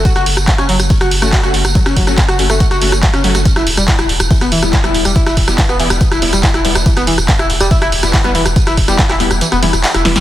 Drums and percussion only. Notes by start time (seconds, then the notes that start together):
0.05 kick, closed hi-hat, tambourine
0.16 cross-stick, snare, closed hi-hat, tambourine
0.26 closed hi-hat, open hi-hat
0.37 cross-stick, closed hi-hat, tambourine
0.48 kick, snare, clap, closed hi-hat, tambourine
0.58 cross-stick, closed hi-hat, tambourine
0.69 closed hi-hat, open hi-hat
0.80 cross-stick, closed hi-hat, tambourine
0.90 kick, closed hi-hat, open hi-hat, tambourine
1.01 cross-stick, snare, closed hi-hat, tambourine
1.11 closed hi-hat, open hi-hat
1.22 cross-stick, closed hi-hat, tambourine
1.33 kick, snare, clap, closed hi-hat, tambourine
1.43 cross-stick, closed hi-hat, tambourine
1.54 closed hi-hat, open hi-hat
1.65 cross-stick, closed hi-hat, tambourine
1.75 kick, closed hi-hat, tambourine
1.86 cross-stick, snare, closed hi-hat, tambourine
1.97 kick, snare, closed hi-hat, open hi-hat
2.07 cross-stick, snare, closed hi-hat, tambourine
2.18 kick, snare, clap, closed hi-hat, tambourine
2.28 cross-stick, closed hi-hat, tambourine
2.39 closed hi-hat, open hi-hat
2.50 cross-stick, closed hi-hat, tambourine
2.60 kick, closed hi-hat, tambourine
2.71 cross-stick, snare, closed hi-hat, tambourine
2.82 closed hi-hat, open hi-hat
2.92 cross-stick, closed hi-hat, tambourine
3.03 kick, snare, clap, closed hi-hat, tambourine
3.14 cross-stick, snare, closed hi-hat, tambourine
3.24 closed hi-hat, open hi-hat
3.35 cross-stick, snare, closed hi-hat, tambourine
3.45 kick, closed hi-hat, tambourine
3.56 cross-stick, snare, closed hi-hat, tambourine
3.67 closed hi-hat, open hi-hat
3.77 cross-stick, closed hi-hat, tambourine
3.88 kick, snare, clap, closed hi-hat
3.99 cross-stick, closed hi-hat, tambourine
4.09 closed hi-hat, open hi-hat
4.20 cross-stick, closed hi-hat, tambourine
4.31 kick, closed hi-hat, open hi-hat, tambourine
4.41 cross-stick, snare, closed hi-hat, tambourine
4.52 closed hi-hat, open hi-hat
4.63 cross-stick, tambourine
4.73 kick, snare, clap, closed hi-hat, tambourine
4.84 cross-stick, closed hi-hat, tambourine
4.94 closed hi-hat, open hi-hat
5.05 cross-stick, closed hi-hat, tambourine
5.16 kick, closed hi-hat
5.26 cross-stick, snare, closed hi-hat, tambourine
5.37 kick, snare, closed hi-hat, open hi-hat
5.48 cross-stick, snare, closed hi-hat, tambourine
5.58 kick, snare, clap, closed hi-hat, tambourine
5.69 cross-stick, closed hi-hat, tambourine
5.80 closed hi-hat, open hi-hat
5.90 cross-stick, closed hi-hat, tambourine
6.01 kick, closed hi-hat, tambourine
6.12 cross-stick, snare, closed hi-hat, tambourine
6.22 closed hi-hat, open hi-hat
6.33 cross-stick, closed hi-hat, tambourine
6.43 kick, snare, clap, closed hi-hat, tambourine
6.54 cross-stick, snare, closed hi-hat, tambourine
6.65 closed hi-hat, open hi-hat
6.75 cross-stick, snare, closed hi-hat, tambourine
6.86 kick, closed hi-hat, tambourine
6.97 cross-stick, snare, closed hi-hat, tambourine
7.07 closed hi-hat, open hi-hat
7.18 cross-stick, closed hi-hat, tambourine
7.28 kick, snare, clap, closed hi-hat, tambourine
7.39 cross-stick, closed hi-hat, tambourine
7.50 closed hi-hat, open hi-hat
7.61 cross-stick, closed hi-hat, tambourine
7.71 kick, closed hi-hat, open hi-hat
7.82 cross-stick, snare, closed hi-hat, tambourine
7.92 closed hi-hat, open hi-hat
8.03 cross-stick, closed hi-hat, tambourine
8.14 kick, snare, clap, closed hi-hat, tambourine
8.24 cross-stick, closed hi-hat, tambourine
8.35 closed hi-hat, open hi-hat
8.46 cross-stick, closed hi-hat, tambourine
8.56 kick, closed hi-hat, tambourine
8.67 cross-stick, snare, closed hi-hat, tambourine
8.77 kick, snare, closed hi-hat, open hi-hat
8.88 cross-stick, snare, closed hi-hat, tambourine
8.99 kick, snare, clap, closed hi-hat
9.09 cross-stick, clap, closed hi-hat, tambourine
9.20 closed hi-hat, open hi-hat
9.31 cross-stick, closed hi-hat, tambourine
9.41 closed hi-hat, tambourine
9.52 cross-stick, snare, closed hi-hat, tambourine
9.63 closed hi-hat, open hi-hat
9.73 cross-stick, closed hi-hat, tambourine
9.84 snare, clap, closed hi-hat, tambourine
9.94 cross-stick, snare, closed hi-hat, tambourine
10.05 snare, closed hi-hat, open hi-hat
10.16 snare, closed hi-hat, tambourine